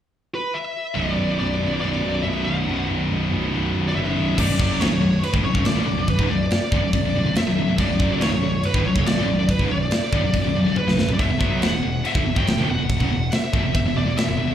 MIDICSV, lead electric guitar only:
0, 0, Header, 1, 2, 480
1, 0, Start_track
1, 0, Key_signature, 2, "minor"
1, 0, Tempo, 426136
1, 1093, Time_signature, 4, 2, 24, 8
1, 16387, End_track
2, 0, Start_track
2, 0, Title_t, "Lead electric guitar"
2, 0, Program_c, 0, 29
2, 392, Note_on_c, 0, 71, 66
2, 610, Note_on_c, 0, 76, 84
2, 629, Note_off_c, 0, 71, 0
2, 1076, Note_off_c, 0, 76, 0
2, 1081, Note_on_c, 0, 74, 87
2, 1559, Note_off_c, 0, 74, 0
2, 1572, Note_on_c, 0, 74, 74
2, 2028, Note_off_c, 0, 74, 0
2, 2041, Note_on_c, 0, 74, 82
2, 2494, Note_off_c, 0, 74, 0
2, 2511, Note_on_c, 0, 76, 96
2, 2755, Note_on_c, 0, 78, 94
2, 2771, Note_off_c, 0, 76, 0
2, 3211, Note_off_c, 0, 78, 0
2, 4374, Note_on_c, 0, 74, 62
2, 4450, Note_off_c, 0, 74, 0
2, 4455, Note_on_c, 0, 76, 82
2, 4901, Note_off_c, 0, 76, 0
2, 4947, Note_on_c, 0, 74, 84
2, 5419, Note_off_c, 0, 74, 0
2, 5424, Note_on_c, 0, 73, 80
2, 5865, Note_off_c, 0, 73, 0
2, 5905, Note_on_c, 0, 71, 69
2, 5968, Note_off_c, 0, 71, 0
2, 6129, Note_on_c, 0, 73, 75
2, 6354, Note_off_c, 0, 73, 0
2, 6379, Note_on_c, 0, 74, 88
2, 6864, Note_on_c, 0, 71, 85
2, 6869, Note_off_c, 0, 74, 0
2, 7098, Note_on_c, 0, 74, 91
2, 7105, Note_off_c, 0, 71, 0
2, 8294, Note_off_c, 0, 74, 0
2, 8299, Note_on_c, 0, 76, 95
2, 8783, Note_off_c, 0, 76, 0
2, 8787, Note_on_c, 0, 74, 99
2, 9252, Note_off_c, 0, 74, 0
2, 9256, Note_on_c, 0, 73, 86
2, 9747, Note_off_c, 0, 73, 0
2, 9748, Note_on_c, 0, 71, 89
2, 9978, Note_on_c, 0, 73, 87
2, 9985, Note_off_c, 0, 71, 0
2, 10214, Note_off_c, 0, 73, 0
2, 10218, Note_on_c, 0, 74, 96
2, 10704, Note_on_c, 0, 71, 90
2, 10707, Note_off_c, 0, 74, 0
2, 10919, Note_off_c, 0, 71, 0
2, 10941, Note_on_c, 0, 74, 95
2, 12138, Note_on_c, 0, 71, 96
2, 12169, Note_off_c, 0, 74, 0
2, 12544, Note_on_c, 0, 74, 74
2, 12545, Note_off_c, 0, 71, 0
2, 12612, Note_off_c, 0, 74, 0
2, 12617, Note_on_c, 0, 76, 100
2, 13095, Note_on_c, 0, 78, 100
2, 13105, Note_off_c, 0, 76, 0
2, 13584, Note_off_c, 0, 78, 0
2, 13589, Note_on_c, 0, 76, 97
2, 13941, Note_on_c, 0, 79, 106
2, 13947, Note_off_c, 0, 76, 0
2, 14303, Note_off_c, 0, 79, 0
2, 14310, Note_on_c, 0, 78, 109
2, 14972, Note_off_c, 0, 78, 0
2, 15021, Note_on_c, 0, 76, 96
2, 15480, Note_off_c, 0, 76, 0
2, 15493, Note_on_c, 0, 76, 95
2, 15736, Note_off_c, 0, 76, 0
2, 15742, Note_on_c, 0, 74, 78
2, 15971, Note_off_c, 0, 74, 0
2, 15976, Note_on_c, 0, 76, 102
2, 16387, Note_off_c, 0, 76, 0
2, 16387, End_track
0, 0, End_of_file